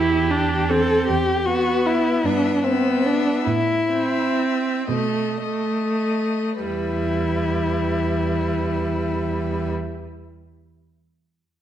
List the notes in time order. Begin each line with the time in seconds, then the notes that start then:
Already playing: E2 E4 G4
0.30 D4
0.69 C4 A4
1.06 E2 G4
1.46 B3 F#4 B4
1.86 E4
2.24 G2 B3 D4 E5
2.64 B3 C4 E5
3.05 D4
3.46 A2 E4
3.91 C4 E5
4.88 B2 A3 D#5
5.43 A3 D#5
6.63 E2 G3 E4 B4